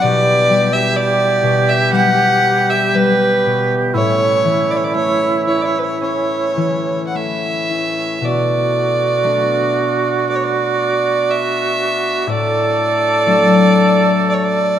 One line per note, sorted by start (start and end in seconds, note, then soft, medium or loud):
0.00 3.92 B2 medium
0.00 1.42 B2 medium
0.00 8.18 E3 medium
0.00 3.91 G3 medium
0.00 2.18 B3 medium
0.00 3.91 B3 medium
0.00 0.89 D4 medium
0.00 0.56 F#4 medium
0.00 3.95 G4 loud
0.00 0.74 D5 loud
0.50 1.91 G3 medium
0.73 0.98 E5 medium
0.96 2.43 G4 medium
0.96 1.70 D5 medium
1.43 3.45 B2 medium
1.69 1.92 E5 medium
1.92 2.93 G3 medium
1.92 2.71 F#5 medium
2.43 4.79 G4 medium
2.70 2.96 E5 medium
2.95 4.00 G3 medium
2.95 3.71 B4 medium
3.46 4.00 B2 soft
3.94 7.84 A2 medium
3.94 8.19 A2 medium
3.94 8.19 C#4 medium
3.94 7.69 E4 medium
3.94 4.72 C#5 medium
4.44 6.56 E3 soft
4.71 4.78 D5 medium
4.77 4.86 C#5 medium
4.84 4.95 D5 medium
4.95 7.14 A3 medium
4.95 5.44 C#5 medium
5.47 7.70 E4 soft
5.47 5.63 C#5 medium
5.61 5.80 C#5 medium
5.61 5.67 D5 soft
5.79 5.85 B4 soft
5.83 6.02 C#5 medium
6.01 8.91 C#4 medium
6.01 7.03 C#5 medium
6.57 8.27 E3 soft
7.07 7.17 F#5 soft
7.15 9.24 A3 soft
7.15 8.26 E5 medium
7.70 10.31 E4 soft
8.21 12.11 B2 medium
8.21 12.24 B2 medium
8.21 10.26 A3 soft
8.21 14.79 D4 medium
8.21 12.29 F#4 medium
8.21 10.28 D5 medium
9.24 12.57 A3 soft
9.24 12.35 B3 soft
9.24 12.24 D4 soft
10.29 12.26 B3 medium
10.29 10.37 D5 medium
10.36 10.45 C#5 medium
10.43 11.32 D5 medium
11.31 12.21 E5 medium
12.21 12.31 E5 medium
12.27 14.79 A2 medium
12.27 14.79 F#3 medium
12.27 14.79 A3 medium
12.27 14.79 A4 loud
12.27 14.27 D5 medium
13.26 14.79 F#3 soft
13.26 14.79 A3 soft
13.26 14.79 D4 soft
14.29 14.35 D5 medium
14.34 14.45 C#5 medium
14.44 14.79 D5 medium